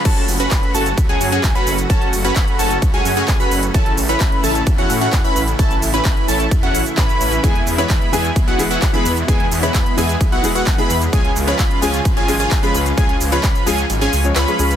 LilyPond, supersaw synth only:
\new Staff \with { instrumentName = "Supersaw synth" } { \time 4/4 \key fis \minor \tempo 4 = 130 <cis' fis' a'>8 r16 <cis' fis' b'>8. <cis' fis' a'>8 r16 <cis' fis' gis'>8 <cis' fis' gis'>8 <cis' fis' b'>8 r16 | <cis' fis' a'>8 r16 <cis' fis' b'>8. <cis' fis' a'>8 r16 <cis' fis' gis'>8 <cis' fis' gis'>8 <cis' fis' b'>8 r16 | <cis' e' a'>8 r16 <cis' e' b'>8. <cis' e' a'>8 r16 <cis' e' fis'>8 <cis' e' fis'>8 <cis' e' b'>8 r16 | <cis' e' a'>8 r16 <cis' e' b'>8. <cis' e' a'>8 r16 <cis' e' fis'>8 r16 <cis' e' b'>4 |
<b e' gis'>8 r16 <b e' b'>8. <b e' gis'>8 r16 <b e' fis'>8 <b e' fis'>8 <b e' b'>8 r16 | <b e' gis'>8 r16 <b e' b'>8. <b e' gis'>8 r16 <b e' fis'>8 <b e' fis'>8 <b e' b'>8 r16 | <cis' eis' gis'>8 r16 <cis' eis' b'>8. <cis' eis' gis'>8 r16 <cis' eis' gis'>8 <cis' eis' gis'>8 <cis' eis' b'>8 r16 | <cis' eis' gis'>8 r16 <cis' eis' b'>8. <cis' eis' gis'>8 r16 <cis' eis' gis'>8 r16 <cis' eis' b'>4 | }